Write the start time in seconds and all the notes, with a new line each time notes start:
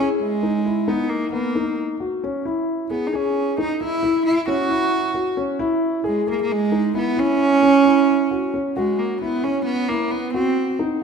0.00 G#4
0.21 G#3
0.43 D#4
0.65 E4
0.88 B3 D#4
1.09 A#3
1.32 A#3 B3
1.55 D#4
2.00 F#4
2.24 C#4
2.45 E4
2.90 B3 G#4
3.07 D#4
3.13 C#4 G#4
3.58 D#4
3.81 E4
4.03 E4
4.26 E4
4.48 C#4 F#4
4.70 E4
5.14 F#4
5.37 C#4
5.59 E4
6.04 G#3 G#4
6.27 A#3 G#4
6.42 A#3
6.52 G#3
6.72 D#4
6.94 B3 E4
7.17 C#4 E4
7.63 C#4
7.85 E4
8.31 F#4
8.54 C#4
8.77 G#3 F#4
8.99 A#3
9.21 B3 E4
9.44 C#4
9.65 B3
9.89 A#3 E4
10.11 B3
10.34 C4 F#4
10.79 D#4